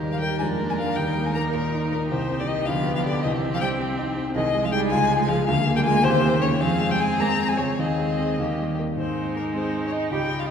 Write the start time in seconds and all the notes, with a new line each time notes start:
Already playing: D#2 D#3 G4 A#4
0.03 G3
0.12 F3 F5
0.20 G3 D#4 A#4 G5
0.38 F2 G#3 D4 G#5
0.61 A#3
0.70 G#3 G#5
0.79 F3 D4 A#4 F5
0.96 D#2 G3 D#4 G5
1.18 A#3
1.26 G#3 G#5
1.35 A#3 A#4 A#5
1.54 A#2 A#3 A#4
1.73 D#4
1.91 A#2 A#3 A#4
2.09 C2 C3 G4 C5
2.30 C4
2.39 D3 D5
2.47 D#3 D#4 G4 D#5
2.66 D2 F3 B3 F5
2.87 B3
2.95 F3 F5
3.05 D3 D4 G4 D5
3.22 C2 D#3 C4 D#5
3.43 C4
3.51 F3 F5
3.60 G3 C5 G5
3.79 C4
3.98 D#4
4.16 C4
4.34 C2 D#3 G#3 G#4 D#5
4.55 G#3
4.63 F3 F5
4.72 G3 D#4 G#4 G5
4.90 C#2 F3 G#3 G#5
5.11 G#3
5.19 G#3 G#5
5.28 F3 F4 G#4 F5
5.46 D2 F3 A#3 F5
5.67 A#3
5.76 G3 G5
5.84 G#3 F4 G#4 G#5
6.03 D#2 C3 G4 C5
6.24 A#3
6.41 C#3 C#4 G4 C#5
6.61 F2 F3 C4 G#4 F5
6.80 G#3
6.90 G3 G5
6.99 G#3 G#4 G#5
7.18 G#3 A#3 A#5
7.39 C4
7.48 G#3 G#5
7.57 C#3 G#3 C#5
7.79 D#2 D#3 C4 G#4 D#5
7.99 G#3
8.19 C4 G#4
8.38 D#2 A#3 G4
8.59 G3
8.79 A#3 A#4
8.97 G#2 G#3 C4 D#4 C5
9.35 A#3 A#4
9.53 G#3 C4 G#4 C5
9.82 C#4 C#5
9.92 D#4 D#5
10.10 C#2 G3 G4 G5
10.39 F4 F5
10.47 D#5